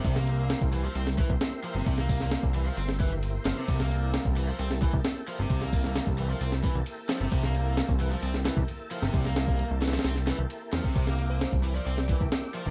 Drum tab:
RD |x---x---x---x---x---x---x---x---|x-------x---x---x---x---x---x---|x---x---x---x---x---x---x---x---|x-------x---x---x---x---x---x---|
HH |--------------------------------|----o---------------------------|--------------------------------|----o---------------------------|
SD |--o-----o---------o-----o-------|--o---o-o---------o---------o---|--o-----o---------o-----o-------|--o---o-o---------o---------o---|
BD |o---------o---------o-o---------|o---o-----o---------o-----------|o---------o---------o-o---------|o---o-----o---------o-----------|

RD |x---x---x---x---x---x---x---x---|x---x---x---xxxxx---x---x---x---|x---x---x---x---x---x---x---x---|
HH |--------------------------------|--------------------------------|--------------------------------|
SD |--o-----o---------o-o---------o-|--o-o-------ooooo-o-o-------o---|--o-----o---------o-----o-------|
BD |o---------o-----------o---------|o-----o-----------------------o-|o---------o---------o-o---------|